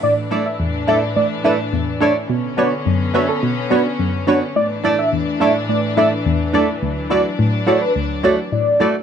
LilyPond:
<<
  \new Staff \with { instrumentName = "Soft synth lead" } { \time 4/4 \key a \mixolydian \tempo 4 = 106 d''16 r8 e''16 r8 e''16 r16 d''16 r16 e''16 r4 r16 | r8 d''16 r8. cis''16 a'16 r8 b'16 r8. cis''16 r16 | d''16 r8 e''16 r8 e''16 r16 d''16 r16 e''16 r4 r16 | r8 d''16 r8. cis''16 b'16 r8 cis''16 r16 d''8. r16 | }
  \new Staff \with { instrumentName = "Nylon-string guitar" } { \time 4/4 \key a \mixolydian r8 <a e' a' d''>16 r8. <a e' a' d''>16 r8. <a e' a' d''>16 r8. <a e' a' d''>16 r16 | r8 <b d' fis' cis''>16 r8. <b d' fis' cis''>16 r8. <b d' fis' cis''>16 r8. <b d' fis' cis''>16 r16 | r8 <a e' a' d''>16 r8. <a e' a' d''>16 r8. <a e' a' d''>16 r8. <a e' a' d''>16 r16 | r8 <a e' fis' d''>16 r8. <a e' fis' d''>16 r8. <a e' fis' d''>16 r8. <a e' fis' d''>16 r16 | }
  \new Staff \with { instrumentName = "Synth stab" } { \time 4/4 \key a \mixolydian << { r8 <d' e' a' d''>8 r8 <d' e' a' d''>8 r8 <d' e' a' b'>8 r8 <d' e' a' cis''>8 | r8 <d' fis' b' cis''>8 r8 <d' fis' b' e''>8 r8 <d' fis' b' cis''>8 r8 <d' fis' b' cis''>8 | r8 <d' e' a' d''>8 r8 <d' e' a' cis''>8 r8 <d' e' a' d''>8 r8 <d' e' a' d''>8 | r8 <e' fis' a' d''>8 r8 <e' fis' a' d''>8 r8 <e' fis' a' d''>8 r8 <e' fis' a' d''>8 | } \\ { a,4 e,4 a,4 e,4 | b,4 fis,4 b,4 fis,4 | a,4 e,4 a,4 e,4 | d,4 a,4 d,4 a,4 | } >> }
  \new Staff \with { instrumentName = "String section" } { \clef bass \time 4/4 \key a \mixolydian <a, e d'>1 | <d b cis'>1 | <a, e d'>1 | <fis d'>1 | }
>>